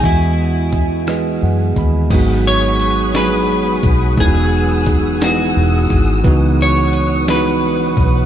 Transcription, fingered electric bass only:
X:1
M:6/8
L:1/8
Q:3/8=58
K:E
V:1 name="Fingered electric bass" clef=bass
E,,4 F,, D,, | G,,,4- G,,, B,,, | E,,,4 E,,, G,,, | C,,4- C,, B,,, |]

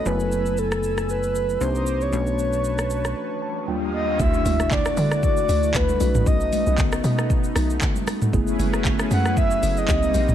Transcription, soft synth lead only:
X:1
M:4/4
L:1/16
Q:"Swing 16ths" 1/4=116
K:F#m
V:1 name="Soft synth lead"
B4 A4 B4 =c3 ^c- | c8- c3 z3 ^d2 | e4 d4 d4 B4 | ^d4 z12 |
z6 f2 e3 ^d4- d |]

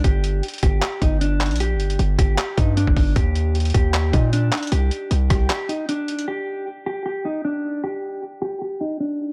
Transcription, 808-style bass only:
X:1
M:4/4
L:1/16
Q:1/4=154
K:Gm
V:1 name="808-style bass" clef=bass
G,,,4 z2 G,,,2 z2 G,,,4- G,,, B,,,- | B,,,3/2 G,,,2- G,,,/2 G,,,2 G,,,2 z2 G,,3 G,,, G,,,2 | E,,6 E,,4 B,,4 z2 | C,,2 z2 C,,2 C,,2 z8 |
z16 | z16 |]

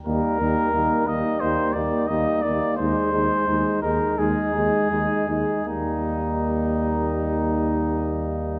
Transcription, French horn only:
X:1
M:4/4
L:1/8
Q:1/4=83
K:Eb
V:1 name="French horn"
B, B, B, B, B, B, B, B, | A, A, A, A, A, A, A, A, | B,8 |]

